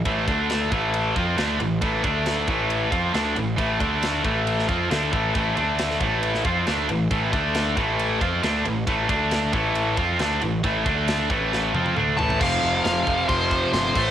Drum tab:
CC |----------------|----------------|----------------|----------------|
RD |x-x-x-x-x-x-x-x-|x-x-x-x-x-x-x-x-|x-x-x-x-x-x-x-x-|x-x-x-x-x-x-x-x-|
SD |----o-------o---|----o-------o---|----o----o--o---|----oo---o--o---|
T1 |----------------|----------------|----------------|----------------|
T2 |----------------|----------------|----------------|----------------|
FT |----------------|----------------|----------------|----------------|
BD |o-o---o---o-----|o-o---o---o-----|o-o---o---o---o-|o-----o---o-----|

CC |----------------|----------------|----------------|x-x-x-x-x-x-x-x-|
RD |x-x-x-x-x-x-x-x-|x-x-x-x-x-x-x-x-|x-x-x-x---------|----------------|
SD |----o-------o---|----o-------o---|----o---o-------|----o-------o---|
T1 |----------------|----------------|----------oo----|----------------|
T2 |----------------|----------------|------------o---|----------------|
FT |----------------|----------------|--------------oo|----------------|
BD |o-o---o---o-----|o-o---o---o-----|o-o---o---------|o-----o-o-o---o-|